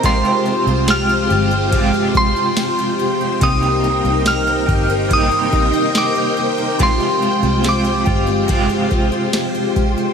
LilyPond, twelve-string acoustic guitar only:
\new Staff \with { instrumentName = "Twelve-string acoustic guitar" } { \time 4/4 \key f \dorian \tempo 4 = 71 <c g'>16 f'16 c'16 f'16 g'16 f'16 g'16 c'16 <c g'>16 f'16 c'16 f'16 g'16 f'16 g'16 c'16 | <c g'>16 ees'16 bes16 ees'16 g'16 ees'16 g'16 bes16 <c g'>16 ees'16 bes16 ees'16 g'16 ees'16 g'16 bes16 | <c g'>16 f'16 c'16 f'16 g'16 f'16 g'16 c'16 <c g'>16 f'16 c'16 f'16 g'16 f'16 g'16 c'16 | }